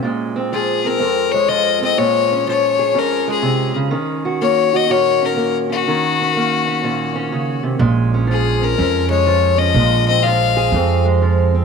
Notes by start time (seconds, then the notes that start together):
Already playing: C#4
0.03 A#2 G#3
0.36 C4
0.52 F3 G#4
0.86 C4 A#4
0.99 F2 C4
1.32 G#3 C#5
1.49 F3 D#5
1.82 C4 D#5
1.98 A#2 G#3 C#5
2.32 C#4
2.47 F3 C#5
2.79 G#4
2.94 F2 C#4
2.99 A#4
3.28 G#3
3.32 G#4
3.42 C3
3.76 C#3
3.91 D#3 C#4
4.25 F#4
4.41 A#3 C#5
4.73 F#4 D#5
4.89 A#2 F#4 C#5
5.22 C#4 A#4
5.37 A#3
5.70 C#4 F#4
5.87 D#3 C#4
6.21 C#4
6.36 A#3
6.68 C#4
6.83 A#2 C#4
7.15 C#4
7.32 C#3
7.63 C3
7.79 A#1 A#2 G#3
8.14 C#4
8.27 F3
8.31 G#4
8.61 C#4 A#4
8.78 F2 C#4
9.10 G#3 C#5
9.26 F3
9.58 C#4 D#5
9.74 A#1 A#2 G#3
10.08 C4 D#5
10.23 F3 F5
10.57 G#4
10.72 F2 C4
11.05 G#3
11.22 F3
11.55 C4